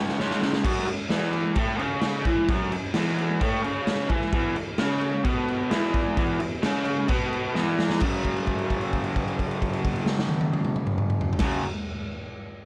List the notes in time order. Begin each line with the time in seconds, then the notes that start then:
Already playing: C#3 G#3 C#4
0.09 snare
0.18 C#3 G#3 C#4, snare
0.31 snare
0.40 C#3 G#3 C#4, snare
0.53 snare
0.63 F#2 F#3, kick, crash
0.86 F#2, crash
1.09 E2 E3, snare, crash
1.33 crash
1.55 A2 A3, kick, crash
1.79 C#3 C#4, crash
2.01 snare, crash
2.25 E3 E4, kick, crash
2.48 F#2 F#3, kick, crash
2.72 F#2, crash
2.94 E2 E3, snare, crash
3.07 snare
3.18 crash
3.40 A2 A3, kick, crash
3.62 C#3 C#4, crash
3.87 snare, crash
4.09 E3 E4, kick, crash
4.21 snare
4.32 E2 E3, kick, crash
4.56 E2, crash
4.78 C#3 C#4, snare, crash
5.01 crash
5.24 B2 B3, kick, crash
5.48 crash
5.70 E2 E3, snare, crash
5.94 kick, crash
6.17 E2 E3, kick, crash
6.40 E2, crash
6.62 C#3 C#4, snare, crash
6.85 crash
7.08 B2 B3, kick, crash
7.33 crash
7.54 E2 E3, snare
7.79 snare
7.90 snare
8.00 F#2 C#3, kick, crash
8.06 F#3
8.25 kick, crash
8.36 crash
8.47 kick, crash
8.59 crash
8.70 kick, crash
8.81 crash
8.93 kick, crash
9.04 crash
9.16 kick, crash
9.28 crash
9.39 kick, crash
9.51 crash
9.62 kick, crash
9.73 crash
9.85 kick, crash
9.96 crash
10.06 snare
10.19 snare
10.29 high tom
10.41 high tom
10.53 high tom
10.65 mid tom
10.76 mid tom
10.87 mid tom
10.98 mid tom
11.10 mid tom
11.21 floor tom
11.33 floor tom
11.39 F#2 C#3, kick, snare, crash
11.44 F#3